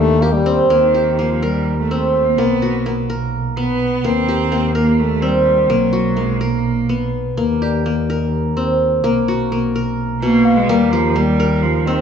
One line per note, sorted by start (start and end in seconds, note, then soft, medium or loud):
0.00 0.67 D#2 medium
0.00 0.23 D#3 medium
0.00 0.23 A3 loud
0.00 0.70 A#3 medium
0.00 0.53 D4 medium
0.00 0.22 G4 medium
0.22 0.35 A#3 medium
0.22 0.94 G4 medium
0.34 0.70 G3 medium
0.46 1.91 C4 medium
0.70 2.39 D#2 medium
0.70 1.21 D#3 medium
0.70 1.18 A#3 medium
0.94 2.20 G4 medium
1.19 1.45 F3 medium
1.19 2.38 A#3 medium
1.43 1.78 G3 medium
1.43 2.56 A#4 medium
1.79 2.28 A3 medium
1.91 3.51 C4 medium
2.26 2.39 A#3 medium
2.38 4.06 B1 medium
2.38 2.86 A#3 medium
2.38 2.85 B3 medium
2.62 3.92 F#4 medium
2.86 3.63 A#3 medium
3.10 3.63 A#4 medium
3.57 4.10 B3 medium
3.57 4.06 B3 medium
4.04 5.70 D#2 medium
4.04 4.51 A#3 medium
4.04 4.75 C4 medium
4.28 5.54 G4 medium
4.52 5.69 A#3 medium
4.75 5.01 A#3 medium
4.75 5.88 A#4 medium
4.99 5.24 A3 medium
5.22 5.71 G3 medium
5.22 6.82 C4 medium
5.69 7.39 B1 medium
5.69 6.19 F#3 medium
5.69 6.16 A#3 medium
5.93 7.23 F#4 medium
6.17 6.42 G#3 medium
6.17 6.95 A#3 medium
6.41 7.13 A#3 medium
6.41 6.95 A#4 medium
6.89 7.43 B3 medium
7.37 9.05 D#2 medium
7.37 7.85 A#3 medium
7.62 8.87 G4 medium
7.62 8.23 D5 soft
7.86 9.03 A#3 medium
8.10 9.23 A#4 medium
8.57 10.17 C4 medium
9.04 10.70 B1 medium
9.04 9.51 A#3 medium
9.28 10.58 F#4 medium
9.52 10.28 A#3 medium
9.76 10.28 A#4 medium
10.21 10.74 B2 medium
10.21 10.58 A#3 medium
10.45 10.89 F5 medium
10.56 10.70 G#3 medium
10.68 12.01 D#2 medium
10.68 10.93 G3 medium
10.68 11.15 A#3 medium
10.92 11.17 F3 medium
10.92 12.01 G4 medium
11.16 11.64 G3 loud
11.16 12.01 A#3 medium
11.40 12.01 A#4 medium
11.62 11.87 F3 medium
11.85 12.01 D#3 medium
11.85 12.01 C4 medium